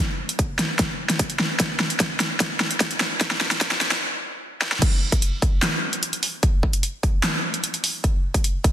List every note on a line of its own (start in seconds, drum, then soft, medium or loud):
0.29 closed hi-hat medium
0.39 kick medium
0.39 closed hi-hat medium
0.59 snare medium
0.59 closed hi-hat medium
0.79 kick medium
0.79 snare medium
0.79 closed hi-hat medium
1.10 snare medium
1.10 closed hi-hat medium
1.19 kick loud
1.19 closed hi-hat medium
1.30 closed hi-hat medium
1.40 snare medium
1.60 kick medium
1.60 snare medium
1.60 closed hi-hat medium
1.80 snare medium
1.90 closed hi-hat soft
2.00 kick medium
2.00 snare medium
2.00 closed hi-hat medium
2.20 snare medium
2.20 closed hi-hat soft
2.40 kick loud
2.40 snare medium
2.40 closed hi-hat medium
2.60 snare medium
2.71 closed hi-hat soft
2.80 kick loud
2.80 snare medium
2.80 closed hi-hat medium
2.91 closed hi-hat soft
3.00 snare medium
3.21 kick loud
3.21 snare medium
3.21 closed hi-hat medium
3.31 snare medium
3.41 snare medium
3.51 snare medium
3.51 closed hi-hat medium
3.61 kick loud
3.61 snare medium
3.61 closed hi-hat medium
3.71 snare medium
3.81 snare loud
3.81 closed hi-hat medium
3.92 snare medium
4.62 snare medium
4.72 snare medium
4.82 kick loud
4.82 closed hi-hat medium
4.82 crash loud
5.12 kick medium
5.12 closed hi-hat medium
5.22 closed hi-hat medium
5.42 kick loud
5.42 closed hi-hat medium
5.62 snare loud
5.62 clap medium
5.62 closed hi-hat medium
5.93 closed hi-hat medium
6.03 closed hi-hat medium
6.13 closed hi-hat medium
6.23 open hi-hat medium
6.43 kick loud
6.43 closed hi-hat medium
6.63 kick medium
6.73 closed hi-hat medium
6.83 closed hi-hat medium
7.03 kick loud
7.03 closed hi-hat medium
7.23 snare loud
7.23 clap medium
7.23 closed hi-hat medium
7.54 closed hi-hat medium
7.64 closed hi-hat medium
7.74 closed hi-hat medium
7.84 open hi-hat medium
8.04 kick loud
8.04 closed hi-hat medium
8.34 kick medium
8.34 closed hi-hat medium
8.44 closed hi-hat medium
8.64 kick loud
8.64 closed hi-hat medium